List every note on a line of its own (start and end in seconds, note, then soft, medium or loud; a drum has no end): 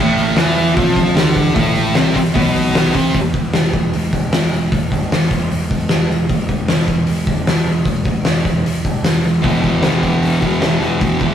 0.00 0.36 A1 loud
0.00 0.36 A2 medium
0.00 0.37 A3 medium
0.18 open hi-hat medium
0.36 0.76 E2 loud
0.36 0.75 E3 medium
0.36 0.76 E4 loud
0.36 snare loud
0.36 open hi-hat medium
0.57 open hi-hat medium
0.75 1.14 F2 loud
0.75 1.16 F3 loud
0.75 1.16 F4 loud
0.75 kick loud
0.75 open hi-hat medium
0.95 kick medium
0.95 open hi-hat medium
1.16 1.55 D2 medium
1.16 1.55 D3 medium
1.16 1.55 D4 loud
1.16 snare loud
1.16 open hi-hat medium
1.36 kick medium
1.36 open hi-hat medium
1.55 1.93 A1 medium
1.55 1.95 A2 loud
1.55 1.95 A3 loud
1.55 kick loud
1.55 open hi-hat medium
1.76 open hi-hat medium
1.95 2.16 C2 loud
1.95 2.16 C3 medium
1.95 2.16 C4 loud
1.95 snare loud
1.95 open hi-hat medium
2.16 muted picked electric bass stroke soft
2.16 muted distorted electric guitar stroke medium
2.16 kick medium
2.16 open hi-hat medium
2.34 2.91 B1 loud
2.34 2.94 B2 loud
2.34 2.94 B3 loud
2.34 kick loud
2.34 open hi-hat medium
2.56 open hi-hat medium
2.75 snare loud
2.75 open hi-hat medium
2.94 3.14 C2 medium
2.94 3.14 C3 medium
2.94 3.15 C4 loud
2.94 kick medium
2.94 open hi-hat medium
3.15 3.34 E1 medium
3.15 kick loud
3.15 open hi-hat medium
3.34 3.54 E1 medium
3.34 kick medium
3.34 open hi-hat soft
3.53 3.93 E1 medium
3.53 snare loud
3.53 open hi-hat medium
3.64 snare soft
3.74 kick medium
3.74 open hi-hat soft
3.93 4.13 E1 loud
3.93 open hi-hat medium
4.13 4.32 E1 medium
4.13 kick medium
4.13 open hi-hat medium
4.33 4.51 E1 medium
4.33 snare loud
4.33 open hi-hat medium
4.52 4.71 E1 medium
4.52 open hi-hat medium
4.72 4.91 E1 medium
4.72 kick loud
4.72 open hi-hat medium
4.92 5.11 E1 medium
4.92 kick medium
4.92 open hi-hat medium
5.12 5.50 E1 medium
5.12 snare loud
5.12 open hi-hat medium
5.22 snare soft
5.31 kick medium
5.31 open hi-hat medium
5.52 5.70 E1 loud
5.52 open hi-hat medium
5.71 5.90 E1 medium
5.71 kick medium
5.71 open hi-hat medium
5.89 6.10 E1 medium
5.89 snare loud
5.89 open hi-hat medium
6.11 6.30 E1 medium
6.11 open hi-hat medium
6.29 6.49 E1 medium
6.29 kick loud
6.29 open hi-hat medium
6.49 6.68 E1 medium
6.49 kick medium
6.49 open hi-hat soft
6.68 7.07 E1 medium
6.68 snare loud
6.68 open hi-hat medium
6.79 snare soft
6.88 kick medium
6.88 open hi-hat medium
7.07 7.27 E1 loud
7.07 open hi-hat medium
7.26 7.46 E1 medium
7.26 kick medium
7.26 open hi-hat medium
7.46 7.65 E1 medium
7.46 snare loud
7.46 open hi-hat medium
7.66 7.85 E1 medium
7.66 open hi-hat medium
7.85 8.05 E1 medium
7.85 kick medium
7.85 open hi-hat medium
8.05 8.23 E1 medium
8.05 kick medium
8.05 open hi-hat medium
8.23 8.63 E1 medium
8.23 snare loud
8.23 open hi-hat medium
8.45 kick medium
8.45 open hi-hat medium
8.65 8.84 E1 loud
8.65 open hi-hat medium
8.85 9.03 E1 medium
8.85 kick medium
8.85 open hi-hat medium
9.04 9.23 E1 medium
9.04 snare loud
9.04 open hi-hat medium
9.24 9.44 E1 medium
9.24 open hi-hat medium
9.42 9.63 E1 medium
9.42 9.81 E2 medium
9.42 9.65 B2 medium
9.42 9.61 E3 medium
9.42 kick loud
9.42 open hi-hat medium
9.61 9.83 E1 medium
9.61 9.86 E3 medium
9.61 kick medium
9.61 open hi-hat soft
9.66 9.84 B2 medium
9.82 10.22 E1 medium
9.82 10.60 E2 medium
9.82 10.45 B2 medium
9.82 snare loud
9.82 open hi-hat medium
9.87 10.41 E3 medium
10.03 kick medium
10.03 open hi-hat medium
10.23 10.42 E1 loud
10.23 open hi-hat medium
10.41 10.61 E1 medium
10.41 10.65 E3 medium
10.41 kick medium
10.41 open hi-hat medium
10.46 10.61 B2 medium
10.60 10.81 E1 medium
10.60 10.98 E2 medium
10.60 10.83 B2 medium
10.60 snare loud
10.60 open hi-hat medium
10.65 10.79 E3 medium
10.80 11.00 E1 medium
10.80 11.04 E3 medium
10.80 open hi-hat soft
10.84 11.01 B2 medium
10.99 11.21 E1 medium
10.99 11.34 E2 medium
10.99 11.26 B2 medium
10.99 kick loud
10.99 open hi-hat medium
11.05 11.22 E3 medium
11.20 11.34 E1 loud
11.20 11.34 E3 medium
11.20 kick medium
11.20 open hi-hat medium
11.27 11.34 B2 soft